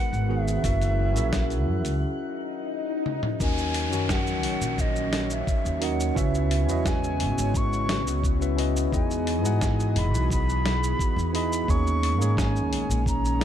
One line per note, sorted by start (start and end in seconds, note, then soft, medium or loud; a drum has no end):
0.00 0.61 D#3 medium
0.00 0.62 G#3 medium
0.00 0.25 B3 medium
0.00 0.26 D#4 medium
0.00 0.26 F#4 medium
0.00 0.62 F#4 medium
0.00 0.26 G#4 medium
0.00 1.98 A#4 medium
0.00 0.61 B4 medium
0.00 0.33 F#5 loud
0.00 2.03 F#5 medium
0.00 0.27 G#5 medium
0.00 2.02 F#6 medium
0.13 0.58 G#1 loud
0.13 shaker soft
0.28 0.60 D#3 medium
0.28 0.60 B3 medium
0.28 0.60 F#4 medium
0.28 0.60 G#4 medium
0.28 2.03 E5 loud
0.28 0.61 F#5 medium
0.48 shaker medium
0.63 1.17 F#1 loud
0.63 2.01 F#3 medium
0.63 1.11 C#4 medium
0.63 2.01 C#4 medium
0.63 1.12 E4 medium
0.63 2.01 E4 medium
0.63 1.12 F#4 medium
0.63 2.01 G#4 medium
0.63 1.12 A#4 medium
0.63 1.13 E5 loud
0.63 kick loud
0.63 open hi-hat medium
0.63 shaker soft
0.82 open hi-hat soft
0.82 shaker soft
1.13 1.68 A#1 medium
1.13 3.35 C#4 medium
1.13 3.35 E4 medium
1.13 3.36 F#4 medium
1.13 3.37 A#4 medium
1.13 open hi-hat soft
1.13 shaker medium
1.18 3.37 E5 loud
1.33 kick loud
1.33 snare medium
1.33 open hi-hat medium
1.33 shaker medium
1.50 open hi-hat soft
1.50 shaker soft
1.68 1.85 F#2 medium
1.85 2.03 C#2 medium
1.85 open hi-hat soft
1.85 shaker medium
2.02 swell medium
3.06 high tom medium
3.23 mid tom medium
3.40 3.93 D#2 loud
3.40 6.13 F#3 medium
3.40 3.88 C#4 medium
3.40 6.14 C#4 medium
3.40 3.88 D#4 medium
3.40 3.88 F#4 medium
3.40 3.89 A#4 medium
3.40 8.88 C#5 medium
3.40 3.89 D#5 medium
3.40 4.13 G#5 loud
3.40 kick loud
3.40 downlifter medium
3.40 shaker medium
3.58 shaker soft
3.74 open hi-hat loud
3.91 4.44 F#2 medium
3.91 5.78 D#3 medium
3.91 5.77 C#4 medium
3.91 5.78 F#4 medium
3.91 5.79 A#4 medium
3.91 shaker medium
3.95 5.79 G#5 medium
4.09 4.82 F#5 medium
4.09 kick loud
4.09 snare medium
4.09 shaker medium
4.27 shaker soft
4.43 4.57 A#1 medium
4.43 open hi-hat medium
4.61 5.40 A#1 medium
4.61 shaker medium
4.78 5.34 D#5 medium
4.78 kick loud
4.78 shaker medium
4.96 shaker soft
5.13 snare medium
5.13 open hi-hat loud
5.30 5.85 E5 medium
5.30 shaker medium
5.47 kick loud
5.47 shaker medium
5.65 6.10 D#2 loud
5.65 shaker soft
5.80 6.12 C#4 medium
5.80 6.12 D#4 medium
5.80 6.12 F#4 medium
5.80 6.12 A#4 medium
5.80 6.13 D#5 medium
5.80 6.20 F#5 medium
5.80 open hi-hat medium
6.00 shaker medium
6.15 6.69 C#2 loud
6.15 8.90 C#3 medium
6.15 8.90 G#3 medium
6.15 11.64 B3 medium
6.15 6.63 C#4 loud
6.15 6.64 E4 medium
6.15 8.90 E4 medium
6.15 6.64 F#4 medium
6.15 8.90 F#4 medium
6.15 6.64 B4 medium
6.15 6.64 E5 loud
6.15 6.89 E5 loud
6.15 kick loud
6.15 shaker medium
6.35 shaker soft
6.51 open hi-hat loud
6.66 7.22 E2 medium
6.66 8.36 C#4 medium
6.66 8.37 E4 medium
6.66 8.38 F#4 medium
6.66 8.38 B4 medium
6.66 shaker medium
6.71 8.39 D#5 loud
6.86 7.58 G#5 loud
6.86 kick loud
6.86 snare medium
6.86 shaker medium
7.04 shaker soft
7.20 7.33 G#1 medium
7.20 open hi-hat medium
7.38 8.07 G#1 medium
7.38 shaker medium
7.54 8.25 C#6 loud
7.54 kick loud
7.54 shaker medium
7.73 shaker soft
7.89 snare medium
7.89 open hi-hat medium
8.07 8.85 C#2 loud
8.07 shaker medium
8.24 kick loud
8.24 shaker medium
8.40 8.53 C#4 medium
8.40 8.54 E4 medium
8.40 8.54 F#4 medium
8.40 8.54 B4 medium
8.40 8.54 E5 medium
8.40 shaker soft
8.57 8.88 C#4 medium
8.57 8.88 E4 medium
8.57 8.88 F#4 medium
8.57 8.88 B4 medium
8.57 8.89 D#5 loud
8.57 open hi-hat medium
8.77 shaker medium
8.91 9.45 E2 loud
8.91 11.66 E3 medium
8.91 9.40 B3 medium
8.91 9.40 D#4 medium
8.91 9.40 E4 medium
8.91 11.65 F#4 medium
8.91 11.65 G#4 medium
8.91 9.40 G#4 medium
8.91 11.66 D#5 medium
8.91 9.41 D#5 medium
8.91 10.00 G#5 medium
8.91 kick loud
8.91 shaker medium
9.11 shaker soft
9.27 open hi-hat medium
9.42 9.97 G#2 medium
9.42 11.28 B3 medium
9.42 11.29 D#4 medium
9.42 11.30 E4 medium
9.42 11.30 G#4 medium
9.42 shaker medium
9.46 11.31 F#5 loud
9.61 kick loud
9.61 snare medium
9.61 shaker medium
9.80 shaker soft
9.96 10.13 E1 medium
9.96 10.31 B5 loud
9.96 open hi-hat medium
10.13 10.92 B1 medium
10.13 shaker medium
10.30 11.31 B5 loud
10.30 kick loud
10.30 shaker medium
10.49 shaker soft
10.66 snare medium
10.66 open hi-hat medium
10.84 shaker medium
10.99 kick loud
10.99 shaker medium
11.16 11.61 E2 loud
11.16 shaker soft
11.33 11.64 B3 medium
11.33 11.64 D#4 medium
11.33 11.64 E4 medium
11.33 11.65 G#4 medium
11.33 11.65 D#5 loud
11.33 11.72 B5 loud
11.33 open hi-hat medium
11.53 shaker medium
11.67 12.20 D#2 loud
11.67 13.44 D#3 medium
11.67 13.44 G#3 medium
11.67 12.16 A#3 medium
11.67 13.44 C#4 medium
11.67 12.16 C#4 medium
11.67 12.16 D#4 medium
11.67 12.17 G#4 medium
11.67 12.17 C#5 loud
11.67 12.39 C#6 loud
11.67 kick loud
11.67 shaker medium
11.87 shaker soft
12.03 open hi-hat medium
12.18 12.71 G#2 medium
12.18 13.36 A#3 medium
12.18 13.37 C#4 medium
12.18 13.37 D#4 medium
12.18 13.38 G#4 medium
12.18 shaker medium
12.23 13.38 C#5 loud
12.37 13.07 G#5 loud
12.37 kick loud
12.37 snare medium
12.37 shaker medium
12.56 shaker soft
12.71 12.85 A#1 medium
12.71 open hi-hat medium
12.89 13.44 A#1 medium
12.89 shaker medium
13.06 13.44 A#5 medium
13.06 kick loud
13.06 shaker medium
13.25 shaker soft
13.39 13.44 A#3 medium
13.39 13.44 C#4 medium
13.39 13.44 D#4 medium
13.39 13.44 G#4 medium